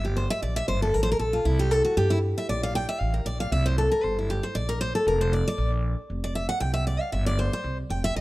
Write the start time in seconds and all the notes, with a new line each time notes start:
Already playing: G1
0.05 G4
0.17 C5
0.30 E5
0.42 A#1 D5
0.56 E5
0.68 G1 C5
0.82 A4
0.94 A1 A#4
1.03 C5
1.12 A#4
1.19 A#1 A4
1.33 F4
1.45 C2 E4
1.59 G4
1.71 A4
1.85 F#4
1.97 G2 G4
2.10 E4
2.38 E5
2.49 A#1 D5
2.63 F5
2.75 G5
2.89 E5
3.00 A1 F5
3.14 A#4
3.25 A#1 D5
3.40 F5
3.52 C2 E5
3.66 C5
3.78 A4
3.92 A#4
4.03 G1 C5
4.19 E4
4.30 G4
4.43 C5
4.55 A#1 D5
4.69 A#4
4.81 C5
4.95 A4
5.06 F1 A#4
5.21 C5
5.33 D5
5.48 D5
5.58 A#1
6.10 F1
6.24 D5
6.35 E5
6.49 F#5
6.60 C2 G5
6.74 E5
6.87 D5
7.01 F5
7.12 G1 E5
7.26 D5
7.39 C5
7.53 C5
7.64 C2
7.90 F1 G5
8.04 E5
8.15 G1 D#5